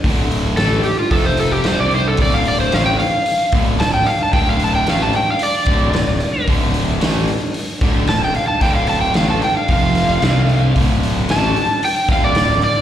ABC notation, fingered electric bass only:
X:1
M:4/4
L:1/8
Q:1/4=112
K:Dm
V:1 name="Fingered electric bass" clef=bass
D,,,2 A,,, z F,,,2 C,,2 | D,,,2 A,,, z2 D,,, D,,, z | D,,,2 A,,, z2 D,,, D,,, z | D,,,2 A,,, z2 D,,, D,,, z |
D,,,2 A,,, z F,,,2 C,,2 | D,,,2 A,,, z2 D,,, D,,, z |]